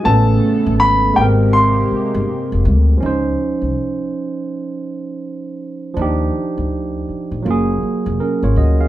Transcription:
0.04 A1 C#3 A3 B3 C#4 A4 A5
0.08 A4
0.66 G#1
0.80 B5
1.14 C3 G#3 A#3 G4 G5
1.18 G#1 G4 A#4
1.22 C4
1.53 C6
1.91 muted upright bass stroke
2.14 G1
2.52 F1
2.65 D2
2.97 F3 C#4
3.02 C#2 D#4 C5
3.62 C2
5.94 D#2 F3 D4
5.99 D#4 G4
6.58 D2
7.09 muted upright bass stroke
7.31 A#1
7.42 F#1 F#3 A#3
7.48 F4 G#4
7.83 muted upright bass stroke
8.06 F1
8.20 C#4 A#4
8.42 G#1 F4 C#5
8.56 D2 F#4 D#5
8.81 G#4 F5

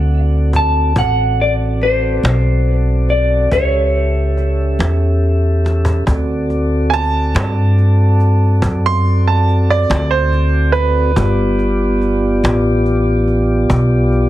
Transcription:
Already playing: D2 C4 F#4 A4 D5 F#5
0.53 A5, cajon bass
0.96 A1 C4 F#4 A4 D5 F#5, cajon bass
1.41 D5
1.81 C5, cajon slap
2.23 B1, cajon slap
3.09 D5, cajon slap
3.51 C#2 C#4 G4 A4 C#5 E5, cajon bass, cajon slap
4.37 cajon slap
4.79 E2, cajon slap
5.65 cajon slap
5.85 cajon bass
6.06 D2 C4 F#4 A4 D5, cajon bass
6.50 cajon slap
6.90 G#5 A5, cajon slap
7.35 G2, cajon slap
7.78 cajon slap
8.20 cajon slap
8.62 F#2, cajon bass
8.86 C6
9.05 cajon slap
9.28 A5
9.48 cajon slap
9.70 D5
9.90 D2, cajon slap
10.11 C5
10.32 cajon slap
10.72 B4, cajon slap
11.16 G1 B3 F4 G4 D5, cajon bass
11.59 cajon slap
12.01 cajon slap
12.44 A1, cajon slap
12.86 cajon slap
13.28 cajon slap
13.70 B1, cajon bass
14.12 cajon slap

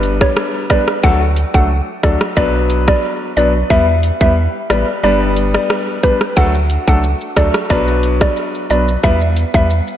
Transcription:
Already playing: G1 G3 B3 D4 B4
0.03 closed hi-hat
0.21 C#5, kick, cross-stick
0.37 cross-stick
0.70 G3 B3 D4 B4 D5, kick, cross-stick, closed hi-hat
0.88 cross-stick
1.03 D2 F#3 A3 D4 A4 F#5, kick
1.36 closed hi-hat
1.54 C#2 F#3 A3 D4 A4 F#5, kick
2.03 D2 F#3 A3 D4 A4 D5, kick, cross-stick, closed hi-hat
2.21 cross-stick
2.37 B1 F#3 B3 D4 B4 D5, kick
2.70 closed hi-hat
2.88 D5, kick, cross-stick
3.37 B1 F#3 B3 D4 B4 D5, closed hi-hat
3.70 E2 G3 B3 E4 B4 E5, kick
4.03 closed hi-hat
4.21 E2 G3 B3 E4 B4 E5, kick
4.70 A1 G3 B3 E4 B4 D5, cross-stick, closed hi-hat
5.03 G1 G3 B3 D4 B4 D5
5.37 closed hi-hat
5.54 D5, cross-stick
5.70 cross-stick
6.03 G3 B3 D4 B4, kick, closed hi-hat
6.21 cross-stick
6.37 D2 F#3 A3 D4 A4 F#5, kick, shaker
6.54 shaker
6.70 closed hi-hat, shaker
6.88 C#2 F#3 A3 D4 A4 F#5, kick, shaker
7.04 shaker
7.21 shaker
7.37 D2 F#3 A3 D4 A4 D5, kick, cross-stick, closed hi-hat, shaker
7.54 cross-stick, shaker
7.70 B1 F#3 B3 D4 B4 D5, kick, shaker
7.88 shaker
8.03 closed hi-hat, shaker
8.21 D5, kick, cross-stick, shaker
8.37 shaker
8.55 shaker
8.70 B1 F#3 B3 D4 B4 D5, closed hi-hat, shaker
8.88 shaker
9.03 E2 G3 B3 E4 B4 E5, kick, shaker
9.21 shaker
9.37 closed hi-hat, shaker
9.54 E2 G3 B3 E4 B4 E5, kick, shaker
9.70 shaker
9.88 shaker

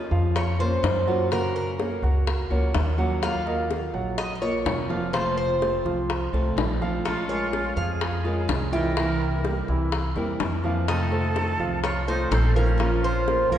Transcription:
Already playing: F3 A#3 C#4 F4 D#5
0.11 F2 F3 F4 F5
0.35 C#5, muted steel-string acoustic guitar stroke, high bongo
0.59 A#3 C#4 F4 A#4 C5, high bongo
0.83 F#2 F3 A#3 C#4 F4, high bongo, low bongo
1.07 F#3 A#3 C#4 F4 F#4 F#5, high bongo
1.31 C#3 A#3 C#4 F#4 A#4 F#5, high bongo
1.56 A#4
1.79 A#3 C#4 F#4 A#4 C#5, high bongo
2.02 C#2 F#4 F#5, high bongo
2.27 muted steel-string acoustic guitar stroke, high bongo
2.50 C#2 F3 A#3 C#4 F#4 A#4 C#5, high bongo
2.74 D#2 F3 A#3 C#4 F#4, high bongo, low bongo
2.98 F3 F#3 A#3 C#4 F#4 F#5, high bongo
3.22 D#3 F#3 A#3 F4 F5, high bongo
3.46 A#3 A#4 D#5, high bongo
3.70 D#3 F#3 A#3 F4, high bongo
3.94 A#1 F#3 F#5
4.18 D#5, muted steel-string acoustic guitar stroke, high bongo
4.35 D#5
4.42 F#3 A#3 F4 A#4 C#5 D#5, high bongo
4.65 F1 D#3 F#3 A#3 F4, high bongo, low bongo
4.89 F3 F#3 A#3 F4 F5, high bongo
5.13 C3 F3 A3 C4 F4 C5 F5, high bongo
5.37 C5
5.61 F3 A3 C4 F4 A4 C5, high bongo
5.85 C2 F3 F4 F5, high bongo
6.09 muted steel-string acoustic guitar stroke, high bongo
6.33 C2 F3 A3 C4 F4 A4 C5, high bongo
6.57 A#1 F3 A3 C4 F4, high bongo, low bongo
6.81 F3 A3 C4 F4 F5, high bongo
7.05 F3 G#3 C#4 F4 C#5, high bongo
7.28 G#3 F4 G#4 A#4 C#5, high bongo
7.53 F3 G#3 C#4 F4, high bongo
7.76 F2 F3 F4 G#4 F5
8.01 muted steel-string acoustic guitar stroke, high bongo
8.24 G#3 C#4 F4 G#4 A#4, high bongo
8.48 C2 F3 G#3 C#4 F4, high bongo, low bongo
8.72 E3 G#3 C#4 E4 F4 A#4 E5 G5, high bongo
8.97 C3 E3 A#3 C4 E4 E5, high bongo
9.45 E3 G3 A#3 C4 E4 G4 A#4, high bongo
9.68 C2 E3 E4 E5, high bongo
9.92 muted steel-string acoustic guitar stroke, high bongo
10.16 E2 E3 G3 A#3 C4 E4 G4 A#4, high bongo
10.40 F2 E3 A#3 C4 E4, high bongo, low bongo
10.64 E3 F3 A#3 C4 E4 F4 F5, high bongo
10.88 C3 D#3 A3 C4 F4 A4 D#5, high bongo
11.12 A3 A4 C5, high bongo
11.36 D#3 A3 C4 F4, high bongo
11.59 C2 F3 F4 F5
11.84 F4 C#5, muted steel-string acoustic guitar stroke, high bongo
12.07 D#3 A3 C4 D#4 F4 A4 C5, high bongo
12.31 A#1 D#3 A3 C4 F4 A4, high bongo, low bongo
12.55 D#3 F3 A3 C4 C#4 F4 A#4 F5, high bongo
12.79 F3 A#3 C#4 F4 C5 F5, high bongo
13.04 F4 C5
13.27 A#3 C#4 F4 A#4 C5, high bongo
13.51 C#2 F3 C#4 F4 A#4 F5, high bongo

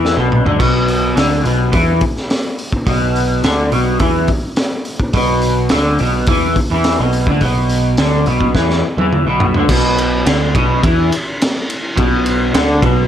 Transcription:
Already playing: E2 E3
0.05 snare
0.17 B1 B2
0.32 mid tom
0.45 D2 D3, floor tom
0.59 B1 B2, kick, crash
0.88 open hi-hat
1.16 D2 D3, snare, open hi-hat
1.44 B1 B2, open hi-hat
1.72 E2 E3, kick, open hi-hat
2.01 kick, open hi-hat
2.17 snare
2.30 snare, open hi-hat
2.59 open hi-hat
2.72 kick
2.86 B1 B2, kick, open hi-hat
3.16 open hi-hat
3.43 D2 D3, snare, open hi-hat
3.72 B1 B2, open hi-hat
3.99 E2 E3, kick, open hi-hat
4.28 kick, open hi-hat
4.56 snare, open hi-hat
4.85 open hi-hat
5.00 kick
5.13 B1 B2, kick, open hi-hat
5.42 open hi-hat
5.69 D2 D3, snare, open hi-hat
5.99 B1 B2, open hi-hat
6.27 E2 E3, kick, open hi-hat
6.56 kick, open hi-hat
6.70 E2 E3
6.84 snare, open hi-hat
6.99 B1 B2
7.13 open hi-hat
7.26 D2 D3, kick
7.41 B1 B2, kick, open hi-hat
7.69 open hi-hat
7.97 D2 D3, snare, open hi-hat
8.26 B1 B2, open hi-hat
8.41 kick
8.54 E2 E3, kick, snare
8.70 snare
8.97 E2 E3, high tom
9.13 mid tom
9.25 B1 B2
9.40 floor tom
9.54 D2 D3, floor tom
9.69 B1 B2, kick, crash
9.98 ride
10.26 D2 D3, snare, ride
10.55 B1 B2, kick, ride
10.83 E2 E3, kick, ride
11.12 ride
11.41 snare, ride
11.70 ride
11.96 B1 B2, kick, ride
12.26 ride
12.54 D2 D3, snare, ride
12.82 B1 B2, kick, ride

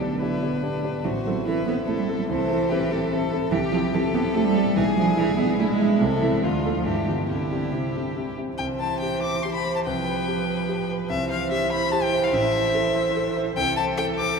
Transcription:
Already playing: B1 D3 D4
0.00 B3 G4 A4 D5
0.22 B3 E4 G4 B4 D5
0.42 B3 G4 D5
0.63 B3 D4 G4 D5
0.84 B3 G4 D5
1.04 A1 E3 F#4 C5
1.25 F#3 C4 E4 A4
1.46 E3 C4 E4 A4 B4
1.66 B3 C4 E4 A4
1.87 A3 C4 E4 A4
1.98 G3
2.08 C4 E4 A4
2.18 F#3
2.27 C2 E3 A4 C5
2.50 C4 E4 A4
2.69 C4 E4 G4 A4 B4
2.91 C4 E4 A4
3.10 C4 E4 A4
3.32 C4 E4 A4
3.51 C2 E3 G4
3.71 F3 C4 E4 G4
3.93 E3 C4 E4 G4 A4
4.13 B3 C4 E4 G4
4.34 A3 C4 E4 G4 A4
4.45 G3
4.56 C4 E4 G4
4.76 B1 E3 G#4
4.96 F3 D4 E4 G#4
5.17 E3 D4 E4 G#4
5.37 B3 D4 E4 G#4
5.59 A3 D4 E4 G#4
5.69 G#3
5.81 D4 E4 G#4
6.01 C2 C3 A4
6.22 E3 C4 E4 A4
6.43 D2 D3 F4
6.65 A3 F4 A4
6.76 F3
6.85 G2 E3 D4 G4
7.07 D3 B3 F4 G4
7.29 C2 D3 E4 G4
7.51 C4 E4 G4
7.72 C3 C4 E4 G4
7.96 C4 E4 G4
8.17 C4 E4 G4
8.38 C4 E4 G4
8.58 C2 E3 C5 G5
8.80 C5 A5
9.00 G4 G5
9.22 C5 D6
9.43 G4 C6
9.54 B5
9.65 C5
9.76 A5
9.85 C2 F3 B4 G5
10.08 B4
10.28 G4
10.48 B4
10.69 G4
10.90 B4
11.10 C2 E3 C5 E5
11.30 C5 F5
11.51 G4 E5
11.72 C5 B5
11.92 G4 A5
12.03 G5
12.13 C5
12.23 F5
12.33 A1 E5
12.54 C5
12.75 A4
12.96 C5
13.17 A4
13.37 C5
13.57 C2 E3 A4 G5
13.77 C5 A5
13.97 A4 G5
14.18 C5 D6

